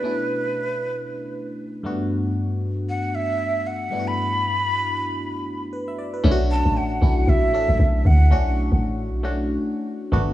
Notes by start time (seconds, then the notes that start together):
Already playing: B4
0.02 B2 A3 C#4 D4 E4
1.83 G2 A3 B3 D4 F#4
2.89 F#5
3.15 E5
3.67 F#5
3.90 G2 A3 B3 D4 E4
4.00 F#4
4.08 B5
5.73 B4
5.88 E5
5.98 D5
6.14 B4
6.24 B1 A3 C#4 D4 E4
6.31 F#4
6.51 A5
6.65 A1
6.77 F#5
7.01 B1 A3 C#4 D4 E4
7.28 B1 E5
7.43 A1
7.53 A3 C#4 D4 A4
7.69 A1
7.79 B1
8.05 D2 F#5
8.31 B1 A3 C#4 D4 F#4
8.72 A1
9.09 B1
9.23 A3 C#4 D4 F#4
10.12 G1 A3 B3 D4 F#4